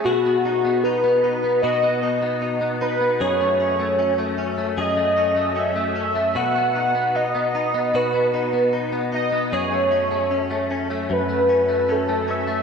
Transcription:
<<
  \new Staff \with { instrumentName = "Soft synth lead" } { \time 4/4 \key fis \dorian \tempo 4 = 76 fis'4 b'4 dis''4 r8 b'8 | cis''4. r8 dis''4 e''4 | fis''4 dis''4 b'4 r8 dis''8 | cis''4. r8 b'4 a'8 e''8 | }
  \new Staff \with { instrumentName = "Clean electric guitar" } { \time 4/4 \key fis \dorian <b, fis'>16 b16 dis'16 b16 dis'16 b16 dis'16 b16 <b, fis'>16 b16 dis'16 b16 dis'16 b16 dis'16 b16 | <fis, gis'>16 a16 cis'16 a16 cis'16 a16 cis'16 a16 <fis, gis'>16 a16 cis'16 a16 cis'16 a16 cis'16 a16 | <b, fis'>16 b16 dis'16 b16 dis'16 b16 dis'16 b16 <b, fis'>16 b16 dis'16 b16 dis'16 b16 dis'16 b16 | <fis, gis'>16 a16 cis'16 a16 cis'16 a16 cis'16 a16 fis,16 a16 cis'16 a16 cis'16 a16 cis'16 a16 | }
>>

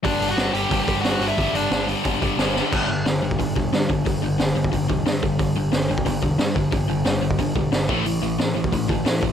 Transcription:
<<
  \new Staff \with { instrumentName = "Lead electric guitar" } { \time 4/4 \key g \lydian \tempo 4 = 180 <d' d''>8. <fis' fis''>8. <g' g''>4 <g' g''>8 <fis' fis''>8. <e' e''>16~ | <e' e''>8 <d' d''>4 r2 r8 | r1 | r1 |
r1 | r1 | r1 | }
  \new Staff \with { instrumentName = "Distorted electric guitar" } { \clef bass \time 4/4 \key g \lydian <g, d g>8 <g, d g>8 <g, d g>8 <g, d g>8 <g, d g>8 <g, d g>8 <g, d g>8 <g, d g>8 | <g, d g>8 <g, d g>8 <g, d g>8 <g, d g>8 <g, d g>8 <g, d g>8 <g, d g>8 <g, d g>8 | <g, d g>8 <g, d>8 <g, d>8 <g, d>8 <g, d>8 <g, d>8 <g, d>8 <g, d>8 | <g, d>8 <g, d>8 <g, d>8 <g, d>8 <g, d>8 <g, d>8 <g, d>8 <g, d>8 |
<g, d>8 <g, d>8 <g, d>8 <g, d>8 <g, d>8 <g, d>8 <g, d>8 <g, d>8 | <g, d>8 <g, d>8 <g, d>8 <g, d>8 <g, d>8 <g, d>8 <g, d>8 <a, e a>8 | <a, e>8 <a, e>8 <a, e>8 <a, e>8 <a, e>8 <a, e>8 <a, e>8 <a, e>8 | }
  \new Staff \with { instrumentName = "Distorted electric guitar" } { \clef bass \time 4/4 \key g \lydian <g, d g>8 <g, d g>8 <g, d g>8 <g, d g>8 <g, d g>8 <g, d g>8 <g, d g>8 <g, d g>8 | <g, d g>8 <g, d g>8 <g, d g>8 <g, d g>8 <g, d g>8 <g, d g>8 <g, d g>8 <g, d g>8 | <g, d g>8 <g, d>8 <g, d>8 <g, d>8 <g, d>8 <g, d>8 <g, d>8 <g, d>8 | <g, d>8 <g, d>8 <g, d>8 <g, d>8 <g, d>8 <g, d>8 <g, d>8 <g, d>8 |
<g, d>8 <g, d>8 <g, d>8 <g, d>8 <g, d>8 <g, d>8 <g, d>8 <g, d>8 | <g, d>8 <g, d>8 <g, d>8 <g, d>8 <g, d>8 <g, d>8 <g, d>8 <a, e a>8 | <a, e>8 <a, e>8 <a, e>8 <a, e>8 <a, e>8 <a, e>8 <a, e>8 <a, e>8 | }
  \new Staff \with { instrumentName = "Picked electric bass" } { \clef bass \time 4/4 \key g \lydian g,,8 g,,8 g,,8 g,,8 g,,8 g,,8 g,,8 g,,8 | g,,8 g,,8 g,,4 g,,8 g,,8 g,,4 | g,,8 g,,8 g,,8 g,,8 g,,8 e,,8 g,8 g,,8 | g,,8 g,,8 g,,8 g,,8 g,,8 e,,8 g,8 g,,8 |
g,,8 g,,8 g,,8 g,,8 g,,8 e,,8 g,8 g,,8 | g,,8 g,,8 g,,8 g,,8 g,,8 e,,8 g,,8 a,,8 | a,,8 a,,8 a,,8 a,,8 a,,8 g,,8 a,8 a,,8 | }
  \new DrumStaff \with { instrumentName = "Drums" } \drummode { \time 4/4 <hho bd>8 hho8 <hho sn>8 hho8 <hho bd>8 <hho bd>8 <hho sn>8 hho8 | <hho bd>8 hho8 <hho sn>8 hho8 <hho bd>8 <hho bd>8 <hho sn>8 sn8 | <cymc bd>4 <hho sn>8. bd16 <hho bd>8 bd8 <hho sn>8 bd8 | <hho bd>4 <hho sn>8. bd16 <hho bd>8 bd8 <hho sn>8 bd8 |
<hho bd>4 <hho sn>8. bd16 <hho bd>8 bd8 <hho sn>8 bd8 | <hho bd>4 <hho sn>8. bd16 <hho bd>8 bd8 <hho sn>8 bd8 | hho4 <hho sn>8. bd16 <hho bd>8 bd8 <hho sn>8 bd8 | }
>>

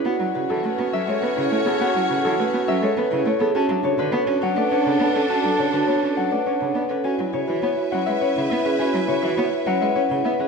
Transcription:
<<
  \new Staff \with { instrumentName = "Harp" } { \time 3/4 \key a \major \tempo 4 = 103 <b' cis'' e'' fis''>8 b'16 a'16 b'8 e''16 cis''16 b'8 cis''16 a'16 | fis''8 b'16 a'16 b'8 e''16 cis''16 b'8 cis''16 a'16 | a''8 cis''16 b'16 cis''8 fis''16 d''16 cis''8 d''16 b'16 | a''8 cis''16 b'16 cis''8 fis''16 d''16 cis''8 d''16 b'16 |
gis''8 cis''16 b'16 cis''8 fis''16 e''16 cis''8 e''16 b'16 | gis''8 cis''16 b'16 cis''8 fis''16 e''16 cis''8 e''16 b'16 | }
  \new Staff \with { instrumentName = "String section" } { \time 3/4 \key a \major <fis' cis''>2.~ | <fis' cis''>2~ <fis' cis''>8. r16 | <d' a'>2.~ | <d' a'>2~ <d' a'>8. r16 |
<b' e''>2.~ | <b' e''>2~ <b' e''>8. r16 | }
  \new Staff \with { instrumentName = "Vibraphone" } { \time 3/4 \key a \major fis'16 e'16 fis'16 fis'16 b'16 fis'16 cis'16 a'16 b'16 e'16 a'16 gis'16 | fis'16 e'16 fis'16 fis'16 b'16 fis'16 cis'16 a'16 b'16 e'16 a'16 gis'16 | fis'16 d'16 fis'16 fis'16 cis''16 fis'16 cis'16 b'16 cis''16 d'16 b'16 a'16 | fis'16 d'16 fis'16 fis'16 cis''16 fis'16 cis'16 b'16 cis''16 d'16 b'16 a'16 |
fis'16 e'16 fis'16 fis'16 cis''16 fis'16 cis'16 b'16 cis''16 e'16 b'16 gis'16 | fis'16 e'16 fis'16 fis'16 cis''16 fis'16 cis'16 b'16 cis''16 e'16 b'16 gis'16 | }
  \new Staff \with { instrumentName = "Clarinet" } { \time 3/4 \key a \major cis'2.~ | cis'2~ cis'8. r16 | d'2.~ | d'2~ d'8. r16 |
e'2.~ | e'2~ e'8. r16 | }
  \new Staff \with { instrumentName = "Cello" } { \time 3/4 \key a \major b16 fis16 cis16 e16 a16 b16 fis16 gis16 b16 cis16 a16 b16 | b16 fis16 cis16 e16 a16 b16 fis16 gis16 b16 cis16 a16 b16 | cis'16 fis16 cis16 d16 b16 cis'16 fis16 a16 cis'16 cis16 b16 cis'16 | cis'16 fis16 cis16 d16 b16 cis'16 fis16 a16 cis'16 cis16 b16 cis'16 |
cis'16 fis16 cis16 e16 b16 r16 fis16 gis16 cis'16 cis16 b16 cis'16 | cis'16 fis16 cis16 e16 b16 r16 fis16 gis16 cis'16 cis16 b16 cis'16 | }
>>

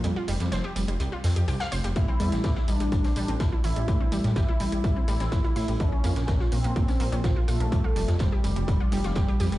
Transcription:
<<
  \new Staff \with { instrumentName = "Analog synth lead" } { \time 4/4 \key a \phrygian \tempo 4 = 125 r1 | e'4. d'2 e'8~ | e'4 e'2. | des'4. c'2 a8~ |
a4 g2. | }
  \new Staff \with { instrumentName = "Synth arpeggio sound" } { \time 4/4 \key a \phrygian g16 f'16 g16 g16 c''16 g'16 g16 g16 g16 f'16 c'16 g'16 g'16 f''16 c''16 g16 | g16 c'16 g16 g16 g'16 e'16 g16 g16 g16 c'16 g16 c'16 e'16 e'16 e'16 g16 | g16 c'16 g16 g16 g'16 e'16 g16 g16 g16 c'16 g16 c'16 e'16 e'16 e'16 g16 | bes16 des'16 bes16 bes16 bes'16 f'16 bes16 bes16 bes16 des'16 bes16 des'16 f'16 f'16 f'16 bes16 |
g16 f'16 g16 g16 c''16 g'16 g16 g16 g16 f'16 g16 f'16 g'16 g'16 g'16 g16 | }
  \new Staff \with { instrumentName = "Detuned saw bass" } { \clef bass \time 4/4 \key a \phrygian f,16 r16 f,,16 f,16 f,,16 r16 f,,16 f,,16 c,16 r16 f,16 f,16 c,16 r16 f,,16 f,,16 | a,,16 r16 e,16 a,,16 a,,16 r16 a,,16 a,,16 a,,16 r16 a,,16 a,,16 a,,16 r16 a,,16 a,,16 | a,16 r16 a,,16 a,16 a,,16 r16 a,,16 a,,16 a,,16 r16 a,,16 a,,16 a,,16 r16 a,16 a,,16 | bes,,16 r16 f,16 bes,,16 bes,,16 r16 bes,,16 bes,,16 bes,,16 r16 bes,,16 bes,,16 bes,,16 r16 bes,,16 bes,,16 |
f,16 r16 f,,16 f,16 f,,16 r16 f,,16 f,,16 f,,16 r16 f,,16 f,,16 f,,16 r16 f,16 f,,16 | }
  \new DrumStaff \with { instrumentName = "Drums" } \drummode { \time 4/4 hh8 <hh hho>16 <hh sn>16 <hh sn>8 <hh hho>16 hh16 hh8 <hh hho sn>16 hh16 <hh hho>16 <hh sn>16 hho16 hh16 | <hh bd>8 <hh hho>16 <hh sn>16 <hh bd sn>16 sn16 <hh hho>16 hh16 <hh bd>16 <hho sn>16 <hh hho>16 hh16 <hh bd sn>8 <hh hho>16 hh16 | <hh bd>8 <hh hho>16 <hh sn>16 <hh bd sn>8 <hh hho>16 hh16 <hh bd>8 <hh hho>16 <hh sn>16 <hh bd sn>16 hh16 hho16 hh16 | <hh bd>8 <hh hho>16 <hh sn>16 <hh bd sn>16 sn16 <hh hho>16 hh16 <hh bd>16 <hho sn>16 <hh hho>16 hh16 <hh bd sn>8 <hh hho>16 hh16 |
<hh bd>8 <hh hho>16 <hh sn>16 <hh bd sn>8 <hh hho>16 hh16 <hh bd>8 <hh hho>16 <hh sn>16 <hh bd sn>16 hh16 hho16 hh16 | }
>>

